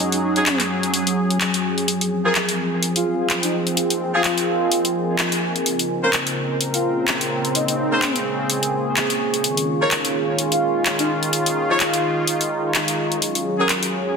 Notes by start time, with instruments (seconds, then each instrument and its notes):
Already playing: analog synth pad F#3 C#4 G#4, ambient pad F#3 G#4 C#5 F5
0.12 soft synth lead D#4, closed hi-hat
0.23 soft synth lead D#4
0.36 horn section F#3 C#4 G#4, closed hi-hat
0.46 clap, closed hi-hat
0.60 clap, closed hi-hat
0.83 closed hi-hat
0.94 closed hi-hat
1.07 closed hi-hat
1.31 closed hi-hat
1.41 clap, closed hi-hat
1.54 closed hi-hat
1.78 closed hi-hat
1.88 analog synth pad F3 C4, ambient pad F4, closed hi-hat
2.01 closed hi-hat
2.25 horn section F3 C4 G#4, soft synth lead A#4
2.35 clap, closed hi-hat
2.49 closed hi-hat
2.54 ambient pad A#4
2.83 closed hi-hat
2.96 soft synth lead F4, closed hi-hat
3.14 ambient pad G#5
3.30 clap, closed hi-hat
3.34 ambient pad D#5
3.43 soft synth lead D#4, closed hi-hat
3.67 closed hi-hat
3.77 closed hi-hat
3.90 closed hi-hat
4.14 horn section F3 C4 G#4, soft synth lead F4
4.24 clap, closed hi-hat
4.38 closed hi-hat
4.72 closed hi-hat
4.85 closed hi-hat
5.19 clap, closed hi-hat
5.32 closed hi-hat
5.56 closed hi-hat
5.66 analog synth pad C#3 C4 A#4, ambient pad A#3, closed hi-hat
5.79 closed hi-hat
6.03 horn section A#3 C#4 C5, soft synth lead A#4
6.07 ambient pad F5
6.13 clap, closed hi-hat
6.27 closed hi-hat
6.31 ambient pad G#4
6.59 ambient pad C#6, closed hi-hat
6.74 soft synth lead F4, closed hi-hat
7.08 clap, closed hi-hat
7.21 closed hi-hat
7.45 closed hi-hat
7.55 soft synth lead D#4, analog synth pad G#4, closed hi-hat
7.68 soft synth lead D#4, closed hi-hat
7.79 soft synth lead D#4
7.92 horn section A#3 C#4 C5
8.02 clap, closed hi-hat
8.16 closed hi-hat
8.50 closed hi-hat
8.63 closed hi-hat
8.97 clap, closed hi-hat
9.10 closed hi-hat
9.34 closed hi-hat
9.44 analog synth pad D#3 C#4 F4, closed hi-hat
9.57 closed hi-hat
9.81 horn section F3 D#4 C#5, soft synth lead A#4
9.91 clap, closed hi-hat
10.05 closed hi-hat
10.39 closed hi-hat
10.52 soft synth lead F4, closed hi-hat
10.86 clap, closed hi-hat
10.99 soft synth lead D#4, closed hi-hat
11.23 closed hi-hat
11.33 analog synth pad D#4, closed hi-hat
11.46 closed hi-hat
11.70 horn section F3 D#4 C#5, soft synth lead F4
11.80 clap, closed hi-hat
11.94 closed hi-hat
12.27 closed hi-hat
12.41 closed hi-hat
12.75 clap, closed hi-hat
12.88 closed hi-hat
13.12 closed hi-hat
13.22 analog synth pad F#3 C#4 G#4, ambient pad F#3, closed hi-hat
13.35 closed hi-hat
13.59 horn section F#3 C#4 G#4, soft synth lead A#4
13.69 clap, closed hi-hat
13.83 closed hi-hat